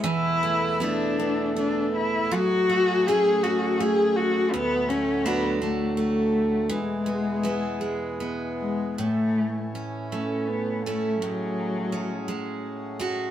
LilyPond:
<<
  \new Staff \with { instrumentName = "Cello" } { \time 3/4 \key a \major \tempo 4 = 81 e'4 d'4 d'8 e'8 | fis'4 gis'8 fis'8 gis'8 fis'8 | b8 cis'8 b8 a8 a4 | gis2 r8 gis8 |
a4 r8 cis'8 b8 a8 | fis2 r4 | }
  \new Staff \with { instrumentName = "Steel-string acoustic guitar" } { \time 3/4 \key a \major e8 a8 <a b e'>8 b8 a4 | fis8 a8 <a cis' gis'>8 cis'8 a4 | d,8 a8 <a d' fis'>8 d'8 a4 | e8 b8 <gis b e'>8 gis8 b4 |
a,4 cis'8 a4 <a cis' e'>8 | a,4 cis'8 gis4 <gis cis' fis'>8 | }
  \new Staff \with { instrumentName = "Harmonium" } { \clef bass \time 3/4 \key a \major << { <b, a>2. | <fis gis'>2. | a,2. | <b, gis>2. |
<e cis'>2. | <fis gis>2. | } \\ { e,2. | a,2. | d,2. | e,2. |
a,2.~ | a,2. | } >> }
>>